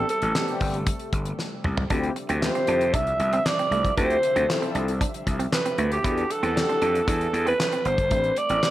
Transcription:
Already playing: C3 G3 A3
0.09 A4, closed hi-hat
0.22 A1, closed hi-hat
0.35 B3 C4 D4 G4, snare, clap
0.48 closed hi-hat
0.60 G1, kick, open hi-hat
0.74 closed hi-hat
0.87 kick, closed hi-hat
0.99 closed hi-hat
1.13 G1, kick, closed hi-hat
1.25 closed hi-hat
1.39 snare
1.64 C2, mid tom
1.77 floor tom
1.90 D2 D3 F3 C4 D4 E4 F4 G4 E5, kick, closed hi-hat
2.03 closed hi-hat
2.16 muted clean electric guitar stroke, closed hi-hat
2.29 D2 C4, closed hi-hat
2.42 C4 E4 F4 G4 C5, muted clean electric guitar stroke, snare, clap
2.55 C4, closed hi-hat
2.67 F2 D4, closed hi-hat
2.81 closed hi-hat
2.94 C2 D4 E5, kick, closed hi-hat
3.07 closed hi-hat
3.19 C2, muted clean electric guitar stroke, closed hi-hat
3.33 C4, closed hi-hat
3.46 D5, muted clean electric guitar stroke, snare, clap
3.59 C4, closed hi-hat
3.71 C2 A3, closed hi-hat
3.85 kick, closed hi-hat
3.97 D2 C4 D4 E4 F4 G4 C5, kick, closed hi-hat
4.10 closed hi-hat
4.23 muted clean electric guitar stroke, closed hi-hat
4.36 D2 C4, closed hi-hat
4.49 C4 E4 F4 A4, muted clean electric guitar stroke, snare, clap
4.62 C4, closed hi-hat
4.75 C2 D4, closed hi-hat
4.88 closed hi-hat
5.01 D4, kick, closed hi-hat
5.14 closed hi-hat
5.27 C2, muted clean electric guitar stroke, kick, closed hi-hat
5.39 C4, closed hi-hat
5.52 B4, muted clean electric guitar stroke, snare, clap
5.66 C4, closed hi-hat
5.78 D2 A3, closed hi-hat
5.92 G4, closed hi-hat
6.04 E2 E3 D4 E4 F#4 G4 A4 F#5, kick, closed hi-hat
6.18 closed hi-hat
6.30 A4, muted clean electric guitar stroke, closed hi-hat
6.43 E2 C4, closed hi-hat
6.55 D4 F#4 G4 A4, muted clean electric guitar stroke, snare, clap
6.69 C4, closed hi-hat
6.82 F2 D4, closed hi-hat
6.95 closed hi-hat
7.08 E2 D4 A4, kick, closed hi-hat
7.21 closed hi-hat
7.33 E2, muted clean electric guitar stroke, closed hi-hat
7.46 C4 B4, closed hi-hat
7.60 muted clean electric guitar stroke, snare, clap
7.72 C4, closed hi-hat
7.85 G1 B3 C5, closed hi-hat
7.98 kick, closed hi-hat
8.11 A1 A3 C4 D4 G4 B4, kick, closed hi-hat
8.24 closed hi-hat
8.36 D5, muted clean electric guitar stroke, closed hi-hat
8.49 A1 C4, closed hi-hat
8.63 C4 D4 G4 B4, muted clean electric guitar stroke, snare, clap

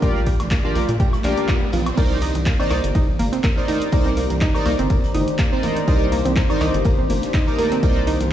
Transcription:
Already playing: F4 A#4 D5 G5, riser
0.02 A#1 A#3 F4 G4 A#4 D5, kick, closed hi-hat, tambourine, high conga
0.16 snare
0.26 G4, kick, open hi-hat, tambourine
0.40 snare, closed hi-hat, high conga, low conga, high woodblock
0.51 A#3, kick, snare, clap, closed hi-hat, tambourine
0.64 D4 F4 G4 A#4 D5, low conga
0.75 A#1 A#3, open hi-hat, high conga
0.89 A#2, closed hi-hat
1.00 G4, kick, closed hi-hat, tambourine
1.13 closed hi-hat, high woodblock
1.23 A#1 D4 F4 G4 A#4 D5, clap, open hi-hat, tambourine, high conga
1.37 D4, closed hi-hat
1.48 F4, kick, snare, clap, closed hi-hat, tambourine
1.62 high conga
1.73 A#1 F4, open hi-hat, tambourine, low conga
1.86 closed hi-hat, high woodblock
1.97 C2 D#3 A#3 D4 D#4 G4 A#4 C5 D5, kick, closed hi-hat, ride, tambourine, crash
2.05 C5
2.22 D#4, open hi-hat, tambourine
2.35 closed hi-hat, high bongo, low conga
2.46 A#3, kick, snare, clap, closed hi-hat, ride, tambourine
2.53 A#5
2.59 C4 D#4 A#4 C5 D5, low conga, high woodblock
2.70 C2 A#3, clap, open hi-hat, tambourine, high woodblock
2.84 G1, closed hi-hat
2.95 G1 D#4, kick, closed hi-hat, ride, tambourine
3.08 low conga
3.19 G1 A#3, open hi-hat, tambourine, high conga
3.33 C4, snare, closed hi-hat
3.43 A#3, kick, snare, clap, closed hi-hat, ride, tambourine
3.57 D#4 A#4 C5 D5, snare
3.68 D#4, open hi-hat, tambourine, high bongo, high conga
3.82 closed hi-hat
3.92 C2 A#3 D#4 A#4 C5 D5, kick, closed hi-hat, ride, tambourine
4.05 C4, snare
4.17 A#3, open hi-hat, tambourine
4.30 snare, closed hi-hat, high bongo, low conga
4.41 D#4, kick, snare, clap, closed hi-hat, ride, tambourine
4.54 D#4 A#4 C5 D5, low conga, high woodblock
4.66 C2 A#3, open hi-hat, tambourine, high woodblock
4.79 G1 C4, closed hi-hat
4.90 G1 A#3, kick, closed hi-hat, ride, tambourine
5.04 closed hi-hat
5.14 G1 D#4, open hi-hat, tambourine, high bongo, high conga
5.28 closed hi-hat
5.39 A#3, kick, snare, clap, closed hi-hat, ride, tambourine
5.52 C4 D#4 A#4 C5 D5
5.63 A#3, open hi-hat, tambourine, high bongo, high conga, low conga
5.77 closed hi-hat
5.87 C2 D#4 A#4 C5 D5, kick, closed hi-hat, ride, tambourine
6.12 A#3, open hi-hat, tambourine
6.25 C4, closed hi-hat, high bongo, low conga
6.36 A#3, kick, snare, clap, closed hi-hat, ride, tambourine
6.49 D#4 A#4 C5 D5, low conga, high woodblock
6.61 C2 D#4, clap, open hi-hat, tambourine, high woodblock
6.74 G1 C6, closed hi-hat
6.85 G1 A#3, kick, closed hi-hat, ride, tambourine
6.99 C4, low conga
7.10 G1 A#3, open hi-hat, tambourine, high conga
7.23 snare, closed hi-hat
7.33 D#4, kick, snare, clap, closed hi-hat, ride, tambourine
7.47 D#4 A#4 C5 D5, snare
7.58 A#3, open hi-hat, tambourine, high bongo, high conga
7.72 C4, closed hi-hat
7.83 C2 A#3 D#4 A#4 C5 D5, kick, closed hi-hat, ride, tambourine
7.96 snare
8.07 D#4, open hi-hat, tambourine
8.20 snare, closed hi-hat, high bongo, low conga

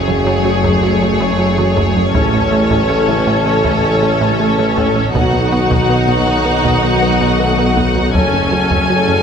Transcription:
Already playing: F#1 F#2 C#3 F#3 A3 G#4 C#5
0.08 F#2, taiko mid
0.26 F#2
0.45 F#3
0.64 F#2, taiko
0.83 F#3
1.02 F#3
1.20 F#2
1.39 F#3
1.58 F#3, taiko mid
1.77 F#2, taiko
1.97 F#2
2.14 A1 A2 E3 C#4 A4, taiko
2.33 A2
2.52 A3
2.71 A2, taiko
2.90 A3
3.08 A2, taiko mid
3.27 A2
3.46 A3
3.65 A2, taiko
3.84 A3
4.02 A3
4.21 A2
4.40 A3
4.59 A3, taiko mid
4.77 A2, taiko
4.96 A2
5.14 B1 B2 D#3 F#3 B3 D#4 F#4 D#5 F#5, taiko
5.33 B2
5.52 B3
5.71 B2, taiko
5.89 B3
6.08 B2
6.27 B2
6.45 B3
6.64 B2, taiko
6.84 B3
7.02 B3
7.21 B2
7.40 A3 B3 A4
7.59 B3
7.77 B2, taiko
7.95 B2
8.14 F#1 F#2 C#3 F#3 A3 C#4 A4 C#5 G#5, taiko
8.34 F#2
8.52 F#3
8.71 F#2, taiko
8.90 F#3
9.08 F#2

